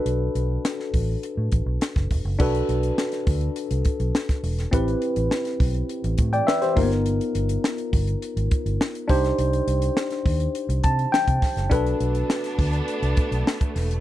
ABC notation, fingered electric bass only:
X:1
M:4/4
L:1/16
Q:1/4=103
K:Bphr
V:1 name="Fingered electric bass" clef=bass
B,,,2 B,,,2 z2 A,,,2 z A,, A,,, B,,, z F,,, E,,, F,,, | B,,,2 B,,,2 z2 D,,2 z C,, z B,,, z2 E,,,2 | A,,,2 z A,,, z2 B,,,2 z A,,, A,,2 z2 G,,,2- | G,,,2 G,,,2 z2 G,,,2 z _A,,, z G,,, z2 C,,2 |
C,,2 C,,2 z2 _E,,2 z C,, C,2 z C, z F,,, | B,,,2 B,,,2 z2 D,,2 z C,, z B,,, z2 E,,,2 |]